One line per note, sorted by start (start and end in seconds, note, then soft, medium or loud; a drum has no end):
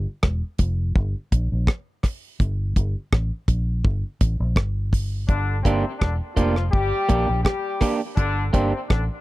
0.23 0.41 E1 medium
0.23 kick loud
0.23 cross-stick loud
0.59 0.93 F1 medium
0.59 kick medium
0.59 closed hi-hat medium
0.96 1.13 G1 medium
0.96 kick loud
1.32 1.49 A#1 medium
1.32 kick loud
1.32 closed hi-hat medium
1.52 1.67 A#1 medium
1.67 kick loud
1.67 cross-stick loud
2.03 kick medium
2.03 cross-stick medium
2.03 open hi-hat medium
2.40 2.74 G1 medium
2.40 kick loud
2.40 hi-hat pedal medium
2.76 2.94 G1 loud
2.76 kick medium
2.76 closed hi-hat medium
3.13 3.30 A1 medium
3.13 kick loud
3.13 cross-stick loud
3.48 3.81 A#1 medium
3.48 kick medium
3.48 closed hi-hat medium
3.85 4.02 G1 medium
3.85 kick loud
4.21 4.38 A1 medium
4.21 kick loud
4.21 closed hi-hat medium
4.40 4.56 A#1 medium
4.56 5.25 G1 medium
4.56 kick loud
4.56 cross-stick loud
4.93 kick medium
4.93 open hi-hat medium
5.28 5.62 G1 loud
5.28 5.58 D3 medium
5.28 5.58 D4 loud
5.28 kick loud
5.28 hi-hat pedal medium
5.63 5.82 G1 loud
5.63 5.93 C3 medium
5.63 5.83 A#3 medium
5.63 5.93 C4 medium
5.63 5.84 D4 medium
5.63 5.84 G4 loud
5.63 kick medium
5.63 closed hi-hat medium
5.99 6.19 E1 medium
5.99 6.15 D3 medium
5.99 6.15 D4 medium
5.99 kick loud
5.99 cross-stick loud
6.36 6.70 F1 medium
6.36 6.65 F3 medium
6.36 6.55 A#3 medium
6.36 6.55 D4 medium
6.36 6.65 F4 medium
6.36 6.54 G4 medium
6.36 kick medium
6.36 closed hi-hat medium
6.56 muted clean electric guitar stroke medium
6.56 cross-stick medium
6.71 6.91 G1 medium
6.71 7.40 G3 loud
6.71 7.41 G4 loud
6.71 kick loud
7.09 7.27 A#1 medium
7.09 7.27 A#3 medium
7.09 7.28 D4 medium
7.09 7.27 G4 medium
7.09 kick loud
7.09 closed hi-hat medium
7.28 7.45 A#1 medium
7.28 muted clean electric guitar stroke soft
7.44 7.96 G3 medium
7.44 7.96 G4 loud
7.44 kick loud
7.44 cross-stick loud
7.81 8.00 A#3 medium
7.81 8.00 D4 medium
7.81 8.00 G4 loud
7.81 kick medium
7.81 cross-stick medium
7.81 open hi-hat medium
8.16 8.51 G1 loud
8.16 8.46 D3 loud
8.16 8.46 D4 loud
8.16 kick loud
8.16 hi-hat pedal medium
8.53 8.71 G1 loud
8.53 8.82 C3 medium
8.53 8.72 A#3 medium
8.53 8.82 C4 medium
8.53 8.72 D4 medium
8.53 8.72 G4 medium
8.53 kick medium
8.53 closed hi-hat medium
8.88 9.07 A1 medium
8.88 9.04 D3 medium
8.88 9.04 D4 medium
8.88 kick loud
8.88 cross-stick loud